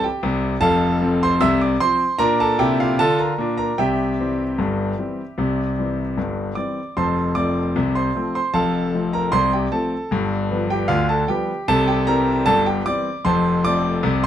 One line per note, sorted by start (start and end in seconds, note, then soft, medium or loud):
0.04 0.23 G4 medium
0.04 0.23 G5 medium
0.23 0.55 C2 loud
0.23 0.55 C3 medium
0.61 0.95 F1 loud
0.61 0.95 F2 loud
0.61 1.17 A4 medium
0.61 1.17 F5 medium
0.61 1.21 A5 loud
1.01 1.23 F3 medium
1.01 1.24 C4 medium
1.23 1.41 C5 medium
1.23 1.42 C6 loud
1.41 1.74 C2 loud
1.41 1.74 C3 loud
1.41 1.60 E5 loud
1.41 1.61 E6 loud
1.61 1.80 D5 medium
1.61 1.81 D6 medium
1.80 2.02 F3 medium
1.80 2.03 C4 medium
1.80 2.18 C5 medium
1.80 2.20 C6 loud
2.19 2.51 A#2 loud
2.19 2.52 D4 loud
2.19 2.38 A#4 loud
2.19 2.39 A#5 loud
2.40 2.59 A4 medium
2.40 2.60 A5 loud
2.59 2.91 C3 loud
2.59 2.92 E4 loud
2.59 2.78 G4 medium
2.59 2.79 G5 loud
2.80 2.99 F4 medium
2.80 2.99 F5 loud
2.99 3.31 D3 loud
2.99 3.32 F4 medium
2.99 3.18 A4 medium
2.99 3.19 A5 loud
3.19 3.56 A#4 medium
3.19 3.56 A#5 medium
3.38 3.70 A#2 medium
3.38 3.71 D4 medium
3.57 3.77 A#4 medium
3.57 3.78 A#5 medium
3.78 4.12 C2 medium
3.78 4.12 C3 medium
3.78 6.53 G4 medium
3.78 6.53 E5 medium
3.78 6.56 G5 loud
4.20 4.41 E3 medium
4.20 4.41 G3 soft
4.20 4.41 C4 medium
4.58 4.92 G1 medium
4.58 4.92 G2 medium
4.98 5.20 E3 soft
4.98 5.20 G3 soft
4.98 5.20 C4 medium
5.38 5.71 C2 medium
5.38 5.71 C3 medium
5.79 6.00 E3 medium
5.79 6.00 G3 medium
5.79 6.01 C4 medium
6.17 6.51 G1 medium
6.17 6.51 G2 medium
6.55 6.78 E3 soft
6.55 6.78 G3 soft
6.55 6.78 C4 soft
6.55 6.94 D5 medium
6.55 6.95 D6 medium
6.97 7.30 F1 medium
6.97 7.30 F2 medium
6.97 7.34 C5 medium
6.97 7.34 A5 medium
6.97 7.36 C6 medium
7.35 7.57 F3 medium
7.35 7.57 A3 medium
7.35 7.58 C4 medium
7.35 7.91 D5 medium
7.35 7.94 D6 loud
7.76 8.09 C2 medium
7.76 8.09 C3 medium
7.95 8.32 C5 medium
7.95 8.34 C6 medium
8.15 8.37 F3 medium
8.15 8.36 A3 medium
8.15 8.37 C4 medium
8.35 8.53 C5 medium
8.35 8.54 C6 medium
8.54 8.87 F1 medium
8.54 8.87 F2 medium
8.54 9.09 A4 medium
8.54 9.09 F5 medium
8.54 9.12 A5 loud
8.94 9.15 F3 medium
8.94 9.15 A3 medium
8.94 9.16 C4 medium
9.13 9.32 A#4 medium
9.13 9.32 A#5 medium
9.32 9.65 C2 medium
9.32 9.65 C3 medium
9.32 9.51 C5 medium
9.32 9.51 C6 loud
9.53 9.72 G4 medium
9.53 9.72 G5 medium
9.72 9.93 F3 medium
9.72 9.93 A3 medium
9.72 9.93 C4 medium
9.72 10.66 A4 medium
9.72 10.70 A5 medium
10.11 10.44 G1 medium
10.11 10.45 G2 loud
10.51 10.72 F3 medium
10.51 10.72 G3 medium
10.51 10.73 B3 medium
10.70 10.89 G4 medium
10.70 10.89 G5 medium
10.88 11.22 D2 medium
10.88 11.22 D3 medium
10.88 11.08 F4 medium
10.88 11.08 F5 loud
11.09 11.28 A4 medium
11.09 11.28 A5 medium
11.28 11.50 F3 medium
11.28 11.50 G3 medium
11.28 11.51 B3 medium
11.28 11.65 G4 medium
11.28 11.67 G5 medium
11.68 12.01 C2 medium
11.68 12.01 C3 loud
11.68 11.86 A4 medium
11.68 11.87 A5 loud
11.88 12.06 G4 medium
11.88 12.07 G5 loud
12.07 12.29 E3 medium
12.07 12.29 G3 medium
12.07 12.29 C4 medium
12.07 12.44 A#4 medium
12.07 12.46 A#5 loud
12.46 12.79 G1 loud
12.46 12.80 G2 medium
12.46 12.65 A4 medium
12.46 12.65 A5 loud
12.66 12.85 G4 medium
12.66 12.85 G5 medium
12.86 13.07 E3 medium
12.86 13.08 G3 medium
12.86 13.08 C4 medium
12.86 13.23 D5 medium
12.86 13.25 D6 loud
13.25 13.58 F1 medium
13.25 13.58 F2 loud
13.25 13.62 C5 medium
13.25 13.62 A5 medium
13.25 13.64 C6 loud
13.65 13.86 F3 medium
13.65 13.87 A3 medium
13.65 13.87 C4 medium
13.65 14.20 D5 medium
13.65 14.23 D6 loud
14.03 14.27 C2 loud
14.03 14.27 C3 loud
14.24 14.27 C6 loud